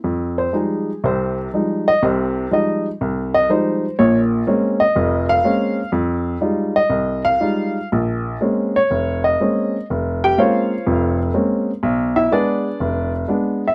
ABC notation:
X:1
M:4/4
L:1/16
Q:"Swing" 1/4=122
K:Fm
V:1 name="Upright piano"
z2 c2 A4 c2 z4 e2 | c4 e2 z4 e2 c4 | d2 z4 e4 f6 | z6 e4 f6 |
z6 d4 e6 | z2 [Gg]2 [Fcdf]6 z6 | z2 [=E=e]2 [=D^G=B=d]6 z4 z e |]
V:2 name="Upright piano" clef=bass
F,,4 [F,G,A,E]2 z2 [C,,C,]4 [F,G,A,E]2 z2 | [C,,C,]4 [F,G,A,E]2 z2 C,,4 [F,G,A,E]2 z2 | [B,,,B,,]4 [A,B,CD]2 z2 [F,,,F,,]4 [A,B,CD]2 z2 | F,,4 [G,A,EF]2 z2 C,,4 [G,A,EF]2 z2 |
B,,,4 [A,B,CD]2 z2 F,,,4 [A,B,CD]2 z2 | F,,,4 [A,B,CD]2 z2 [F,,,F,,]4 [A,B,CD]2 z2 | =B,,,4 [^G,=B,]2 z2 F,,,4 [G,B,=D]2 z2 |]